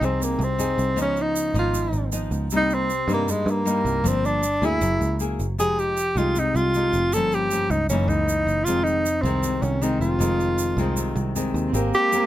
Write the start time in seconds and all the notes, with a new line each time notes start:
Already playing: F3
0.01 C2 C4 D#4 G#4, shaker
0.20 C3 A#3, shaker
0.39 C2, shaker
0.44 C4
0.59 C4 D#4 G#4, shaker
0.78 C2, shaker
0.96 C#2 C#3 F3 B3 D#4, shaker
1.01 C#4
1.17 shaker
1.21 D#4
1.36 shaker
1.54 G#1 F3 B3 D#4, shaker
1.59 F4
1.74 G#2, shaker
1.93 G#1, shaker
2.12 F3 B3 D#4, shaker
2.31 C#2, shaker
2.50 C2 C3 G3 A#3 D#4, shaker
2.57 D#4
2.70 shaker
2.74 C4
2.90 shaker
3.08 G2 G3 A#3 D#4, shaker
3.13 A#3
3.28 G2 G#3, shaker
3.46 G2, shaker
3.50 A#3
3.65 G3 A#3 D#4, shaker
3.85 C2, shaker
4.04 G1 G2 F3 A#3 C4 D4, shaker
4.25 D4, shaker
4.43 shaker
4.62 D2 A#3 E4 G#4, shaker
4.81 F#1 F#3, shaker
5.01 C#2, shaker
5.20 A#3 E4 G#4, shaker
5.40 F#1, shaker
5.58 F1 F3 G#3 D#4 G4 G#4, shaker
5.79 G4, shaker
5.97 shaker
6.16 C2 G#3 D#4 F4 G4, shaker
6.36 C3 D#4, shaker
6.55 C2 F4, shaker
6.74 G#3 D#4 G4, shaker
6.93 F1, shaker
7.12 G1 G2 F3 A#3 A4, shaker
7.16 C#4
7.32 G4, shaker
7.51 F3 A#3 C#4, shaker
7.70 C#2 D#4, shaker
7.89 F#1 F#2 E3 A#3 C#4 D#4, shaker
8.08 C#2 D#4, shaker
8.29 shaker
8.47 F#1, shaker
8.64 F1 F2 D#3 G#3 C4 F4, shaker
8.83 D#4, shaker
9.06 shaker
9.22 C2 D#3 G#3 C4, shaker
9.26 C4
9.43 C3, shaker
9.62 C2 C#4, shaker
9.82 D#3 G#3 C4 D#4, shaker
10.01 F1 F4, shaker
10.19 F1 F2 D#3 G#3 C4, shaker
10.40 shaker
10.58 shaker
10.77 C2 D#3 G#3 C4, shaker
10.97 C3, shaker
11.16 C2, shaker
11.36 D#3 G#3 C4, shaker
11.54 D#2, shaker
11.67 C4
11.73 G#1 G#3 A#3 C4 G4 A#4, shaker
11.94 G4, shaker
12.12 C4 G4 A#4, shaker